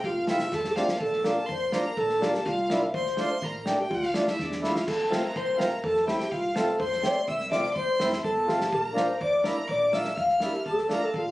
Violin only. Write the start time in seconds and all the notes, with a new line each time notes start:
0.04 F5
0.29 E5
0.54 A5
0.75 F5
0.98 A5
1.46 C6
1.73 A#5
1.98 A5
2.45 F5
2.95 C6
3.19 C6
3.44 A#5
3.81 G5
3.95 F5
4.28 E5
4.41 D5
4.64 F5
4.90 A5
5.15 A#5
5.36 C6
5.59 A#5
5.83 A5
6.07 G5
6.31 F5
6.55 A5
6.80 C6
7.28 E6
7.51 D6
7.73 C6
8.23 A5
8.73 A5
8.84 A#5
9.19 D6
9.45 A#5
9.67 D6
9.93 E6
10.17 F6
10.66 A5
10.92 A#5
11.04 A5
11.15 F5